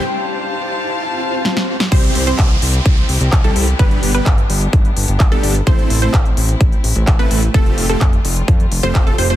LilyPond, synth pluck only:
\new Staff \with { instrumentName = "Synth pluck" } { \time 4/4 \key c \major \tempo 4 = 128 r1 | c''8. c''16 r2 r16 a'8 r16 | b'8. b'16 r2 r16 a'8 r16 | c''8. c''16 r2 r16 b'8 r16 |
a'8. a'16 r4. r16 c''8 a'16 c''16 c''16 | }